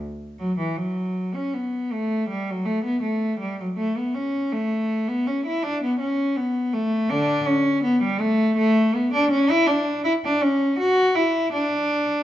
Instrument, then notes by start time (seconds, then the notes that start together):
cello
0.39 F#3
0.59 E3
0.77 F#3
1.35 C#4
1.53 B3
1.92 A3
2.29 G3
2.50 F#3
2.65 A3
2.84 B3
3.02 A3
3.39 G3
3.60 F#3
3.77 A3
3.97 B3
4.14 C#4
4.52 A3
5.08 B3
5.27 C#4
5.46 E4
5.63 D4
5.83 B3
5.99 C#4
6.36 B3
6.73 A3
7.09 D3 D4
7.46 C#4
7.83 B3
8.03 G3
8.20 A3
8.57 A3
8.95 B3
9.14 D4
9.31 C#4
9.50 E4
9.67 D4
10.04 E4
10.25 D4
10.42 C#4
10.79 F#4
11.15 E4
11.52 D4